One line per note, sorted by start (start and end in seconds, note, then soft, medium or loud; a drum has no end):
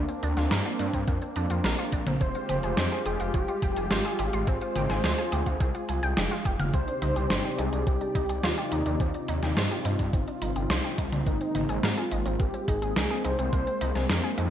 0.00 2.17 A#3 medium
0.00 2.17 C4 medium
0.00 0.23 D4 medium
0.00 2.17 D4 medium
0.09 0.16 C4 medium
0.09 closed hi-hat soft
0.23 0.33 D2 medium
0.23 0.35 D4 loud
0.23 closed hi-hat medium
0.37 0.47 D2 medium
0.37 0.49 F4 medium
0.37 snare soft
0.37 closed hi-hat soft
0.51 0.61 G2 loud
0.51 0.63 A#4 loud
0.51 snare loud
0.51 closed hi-hat soft
0.65 0.73 F4 medium
0.65 closed hi-hat soft
0.79 0.89 G2 medium
0.79 0.91 D4 medium
0.79 closed hi-hat medium
0.93 1.04 G2 medium
0.93 1.07 C4 medium
0.93 kick medium
0.93 closed hi-hat soft
1.08 1.18 F2 loud
1.08 1.20 A#3 medium
1.08 kick loud
1.08 closed hi-hat soft
1.22 1.29 C4 medium
1.22 closed hi-hat soft
1.36 1.46 F2 medium
1.36 1.48 D4 medium
1.36 closed hi-hat medium
1.50 1.60 F2 medium
1.50 1.62 F4 medium
1.50 closed hi-hat soft
1.64 1.74 A#1 loud
1.64 1.76 A#4 loud
1.64 snare loud
1.64 closed hi-hat soft
1.78 1.86 F4 medium
1.78 closed hi-hat soft
1.92 2.03 A#1 medium
1.92 2.05 D4 medium
1.92 kick medium
1.92 closed hi-hat medium
2.07 2.17 A#1 medium
2.07 2.20 C4 medium
2.07 closed hi-hat soft
2.07 mid tom medium
2.21 2.31 F1 loud
2.21 6.70 G#3 medium
2.21 2.33 C4 medium
2.21 6.70 F4 medium
2.21 4.45 G4 medium
2.21 3.07 C5 loud
2.21 kick loud
2.21 closed hi-hat soft
2.35 2.42 F4 medium
2.35 closed hi-hat soft
2.49 2.59 F1 medium
2.49 2.61 G4 loud
2.49 closed hi-hat medium
2.49 mid tom medium
2.63 2.73 F1 medium
2.63 2.75 G#4 medium
2.63 closed hi-hat soft
2.77 2.87 F2 loud
2.77 2.90 C5 loud
2.77 snare loud
2.77 closed hi-hat soft
2.92 2.99 G#4 medium
2.92 closed hi-hat soft
3.06 3.16 F1 medium
3.06 3.18 G4 medium
3.06 3.34 G#4 loud
3.06 closed hi-hat medium
3.20 3.30 F1 medium
3.20 3.34 F4 medium
3.20 closed hi-hat medium
3.34 3.44 F1 loud
3.34 3.46 C4 medium
3.34 4.49 G4 loud
3.34 kick loud
3.34 closed hi-hat soft
3.48 3.56 F4 medium
3.48 closed hi-hat soft
3.62 3.72 F1 medium
3.62 3.74 G4 loud
3.62 kick loud
3.62 closed hi-hat medium
3.76 3.87 F1 medium
3.76 3.89 G#4 medium
3.76 closed hi-hat soft
3.91 4.01 G#1 loud
3.91 4.03 C5 loud
3.91 snare loud
3.91 closed hi-hat soft
4.05 4.12 G#4 medium
4.05 closed hi-hat soft
4.19 4.29 G#1 medium
4.19 4.31 G4 medium
4.19 closed hi-hat medium
4.33 4.43 G#1 medium
4.33 4.47 F4 medium
4.33 closed hi-hat soft
4.47 4.57 G#1 loud
4.47 4.59 C4 medium
4.47 6.72 G#4 medium
4.47 6.17 C5 loud
4.47 kick loud
4.47 closed hi-hat medium
4.61 4.69 F4 medium
4.61 closed hi-hat soft
4.76 4.86 G#1 medium
4.76 4.88 G4 loud
4.76 closed hi-hat medium
4.76 mid tom medium
4.90 5.00 G#1 medium
4.90 5.02 G#4 medium
4.90 snare soft
4.90 closed hi-hat soft
5.04 5.14 D2 loud
5.04 5.16 C5 loud
5.04 snare loud
5.04 closed hi-hat medium
5.18 5.25 G#4 medium
5.18 closed hi-hat soft
5.32 5.42 D2 medium
5.32 5.44 G4 medium
5.32 closed hi-hat medium
5.46 5.56 D2 medium
5.46 5.60 F4 medium
5.46 kick medium
5.46 closed hi-hat medium
5.60 5.70 C2 loud
5.60 5.73 C4 medium
5.60 kick loud
5.60 closed hi-hat medium
5.75 5.82 F4 medium
5.75 closed hi-hat soft
5.89 5.99 C2 medium
5.89 5.96 G#4 medium
5.89 closed hi-hat medium
6.03 6.13 C2 medium
6.03 6.15 G5 medium
6.03 closed hi-hat soft
6.17 6.27 F1 loud
6.17 6.29 G4 medium
6.17 snare loud
6.17 closed hi-hat medium
6.31 6.45 F4 medium
6.31 snare soft
6.31 closed hi-hat soft
6.45 6.55 F1 medium
6.45 6.57 G4 loud
6.45 kick medium
6.45 closed hi-hat medium
6.60 6.70 F1 medium
6.60 6.72 F5 medium
6.60 closed hi-hat soft
6.60 mid tom medium
6.74 6.84 C2 loud
6.74 11.23 C3 medium
6.74 6.86 C4 medium
6.74 14.50 C4 medium
6.74 11.23 D#4 medium
6.74 8.98 G4 medium
6.74 7.60 C5 loud
6.74 11.23 D5 medium
6.74 kick loud
6.74 closed hi-hat medium
6.88 6.95 D4 medium
6.88 closed hi-hat soft
7.02 7.12 C2 medium
7.02 7.14 D#4 loud
7.02 closed hi-hat medium
7.02 mid tom medium
7.16 7.26 C2 medium
7.16 7.28 G4 medium
7.16 closed hi-hat medium
7.30 7.40 G1 loud
7.30 7.42 C5 loud
7.30 snare loud
7.30 closed hi-hat medium
7.44 7.52 G4 medium
7.44 closed hi-hat soft
7.59 7.69 C2 medium
7.59 7.71 D#4 medium
7.59 7.89 G#4 loud
7.59 closed hi-hat medium
7.73 7.83 C2 medium
7.73 7.86 D4 medium
7.73 closed hi-hat medium
7.87 7.97 C2 loud
7.87 7.99 C4 medium
7.87 8.43 G4 loud
7.87 kick loud
7.87 closed hi-hat medium
8.01 8.08 D4 medium
8.01 closed hi-hat soft
8.15 8.25 C2 medium
8.15 8.27 D#4 loud
8.15 kick loud
8.15 closed hi-hat medium
8.29 8.39 C2 medium
8.29 8.41 G4 medium
8.29 closed hi-hat medium
8.43 8.54 D#2 loud
8.43 8.73 F4 medium
8.43 8.56 C5 loud
8.43 snare loud
8.43 closed hi-hat medium
8.58 8.65 G4 medium
8.58 closed hi-hat soft
8.72 8.82 D#2 medium
8.72 9.29 D#4 medium
8.72 8.84 D#4 medium
8.72 closed hi-hat medium
8.86 8.96 D#2 medium
8.86 9.00 D4 medium
8.86 closed hi-hat medium
9.00 9.10 D#2 loud
9.00 9.12 C4 medium
9.00 11.24 F4 medium
9.00 kick loud
9.00 closed hi-hat medium
9.14 9.22 D4 medium
9.14 closed hi-hat soft
9.28 9.38 D#2 medium
9.28 9.41 D#4 loud
9.28 closed hi-hat medium
9.42 9.52 D#2 medium
9.42 9.55 G4 medium
9.42 snare soft
9.42 closed hi-hat medium
9.57 9.67 G2 loud
9.57 9.69 C5 loud
9.57 snare loud
9.57 closed hi-hat medium
9.71 9.78 G4 medium
9.71 closed hi-hat soft
9.85 9.95 G2 medium
9.85 9.97 D#4 medium
9.85 closed hi-hat loud
9.99 10.09 G2 medium
9.99 10.13 D4 medium
9.99 kick medium
9.99 closed hi-hat medium
10.13 10.23 G1 loud
10.13 10.25 C4 medium
10.13 kick loud
10.13 closed hi-hat medium
10.28 10.35 D4 medium
10.28 closed hi-hat soft
10.42 10.52 G1 medium
10.42 10.54 D#4 loud
10.42 closed hi-hat medium
10.56 10.66 G1 medium
10.56 10.68 G4 medium
10.56 closed hi-hat soft
10.70 10.80 C2 loud
10.70 10.82 C5 loud
10.70 snare loud
10.70 closed hi-hat medium
10.84 10.91 G4 medium
10.84 closed hi-hat soft
10.98 11.08 C2 medium
10.98 11.10 D#4 medium
10.98 kick loud
10.98 closed hi-hat loud
11.12 11.22 C2 medium
11.12 11.26 D4 medium
11.12 closed hi-hat medium
11.12 mid tom medium
11.27 11.37 G#1 loud
11.27 14.50 G#3 medium
11.27 11.39 A#3 medium
11.27 14.50 A#3 medium
11.27 11.85 D#4 medium
11.27 kick loud
11.27 closed hi-hat medium
11.41 11.48 C4 medium
11.41 closed hi-hat soft
11.55 11.65 G#1 medium
11.55 11.67 D#4 loud
11.55 closed hi-hat medium
11.55 mid tom medium
11.69 11.79 G#1 medium
11.69 11.81 G#4 medium
11.69 closed hi-hat medium
11.83 11.93 G#2 loud
11.83 12.41 F4 medium
11.83 11.95 A#4 loud
11.83 snare loud
11.83 closed hi-hat medium
11.97 12.05 G#4 medium
11.97 closed hi-hat soft
12.11 12.22 G#1 medium
12.11 12.24 D#4 medium
12.11 closed hi-hat medium
12.26 12.36 G#1 medium
12.26 12.39 C4 medium
12.26 closed hi-hat medium
12.40 12.50 G#1 loud
12.40 12.52 A#3 medium
12.40 12.69 G4 loud
12.40 kick loud
12.40 closed hi-hat medium
12.54 12.61 C4 medium
12.54 closed hi-hat soft
12.68 12.78 G#1 medium
12.68 12.80 D#4 loud
12.68 13.26 G#4 loud
12.68 kick loud
12.68 closed hi-hat medium
12.82 12.92 G#1 medium
12.82 12.94 G#4 medium
12.82 closed hi-hat soft
12.96 13.06 C2 loud
12.96 13.08 A#4 loud
12.96 snare loud
12.96 closed hi-hat medium
13.10 13.18 G#4 medium
13.10 closed hi-hat soft
13.25 13.35 C2 medium
13.25 13.37 D#4 medium
13.25 14.38 C5 loud
13.25 closed hi-hat medium
13.39 13.49 C2 medium
13.39 13.52 C4 medium
13.39 closed hi-hat medium
13.53 13.63 C2 loud
13.53 13.65 A#3 medium
13.53 kick loud
13.53 closed hi-hat medium
13.67 13.74 C4 medium
13.67 closed hi-hat soft
13.81 13.91 C2 medium
13.81 13.93 D#4 loud
13.81 closed hi-hat medium
13.95 14.05 C2 medium
13.95 14.07 G#4 medium
13.95 snare soft
13.95 closed hi-hat soft
14.10 14.20 F2 loud
14.10 14.22 A#4 loud
14.10 snare loud
14.10 closed hi-hat soft
14.24 14.31 G#4 medium
14.24 closed hi-hat soft
14.38 14.48 F2 medium
14.38 14.50 D#4 medium
14.38 closed hi-hat medium